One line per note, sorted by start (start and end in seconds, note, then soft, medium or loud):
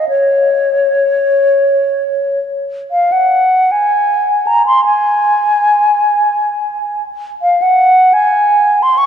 0.09 2.39 C#5 soft
2.91 3.13 F5 medium
3.12 3.73 F#5 soft
3.71 4.48 G#5 medium
4.47 4.66 A#5 medium
4.66 4.84 C6 medium
4.85 7.03 G#5 medium
7.42 7.63 F5 medium
7.62 8.15 F#5 medium
8.13 8.84 G#5 medium
8.82 8.99 C6 medium
8.98 9.06 C#6 medium